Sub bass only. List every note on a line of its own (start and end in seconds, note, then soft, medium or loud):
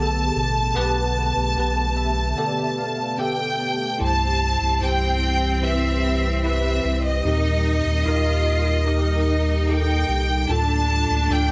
0.00 0.31 B1 loud
0.36 0.74 A1 medium
0.76 1.33 B1 medium
1.37 1.56 B1 medium
1.57 2.35 B1 loud
4.01 4.58 C2 medium
4.62 4.80 C2 medium
4.82 6.80 C2 medium
6.85 7.22 C2 medium
7.25 7.82 D#2 medium
7.86 8.05 D#2 medium
8.06 10.05 D#2 loud
10.09 10.46 C2 medium
10.49 11.06 D2 medium
11.11 11.29 D2 loud
11.30 11.52 D2 loud